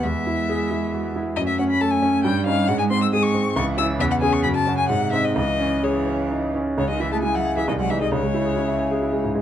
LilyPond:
<<
  \new Staff \with { instrumentName = "Violin" } { \time 3/4 \key cis \minor \tempo 4 = 134 e''2~ e''8 r8 | dis''16 e''16 fis''16 b''16 a''16 gis''8. g''8 eis''8 | fis''16 gis''16 bis''16 e'''16 dis'''16 cis'''8. cis'''8 e'''8 | e''16 fis''16 gis''16 cis'''16 b''16 a''8 gis''16 fis''8 e''16 dis''16 |
dis''4 cis''4 r4 | cis''16 dis''16 e''16 a''16 gis''16 fis''8 e''16 dis''16 fis''16 e''16 dis''16 | cis''2~ cis''8 r8 | }
  \new Staff \with { instrumentName = "Grand piano" } { \time 3/4 \key cis \minor e,8 e'8 gis'8 e'8 fis'8 e'8 | fis,8 cis'8 a'8 cis'8 g,8 <cis' dis'>8 | gis,8 bis8 gis'8 bis8 cis,8 <cis' e'>8 | e,8 <cis' gis'>8 fis,8 <cis' fis'>8 gis,8 <bis dis'>8 |
cis,8 cis'8 gis'8 cis'8 dis'8 cis'8 | cis,16 gis16 e'16 gis'16 e'16 e''16 gis''16 gis'16 bis,,16 gis16 dis'16 gis'16 | cis,16 gis16 e'16 gis'16 e'16 e''16 gis''16 gis'16 e'16 gis16 gis,16 gis16 | }
  \new Staff \with { instrumentName = "Cello" } { \clef bass \time 3/4 \key cis \minor gis2. | a4 a4 g4 | gis4 gis4 e4 | cis4 cis4 bis,4 |
e4 e4. r8 | cis16 dis16 e16 a16 gis16 fis8 e16 dis16 fis16 e16 dis16 | cis2~ cis8 r8 | }
>>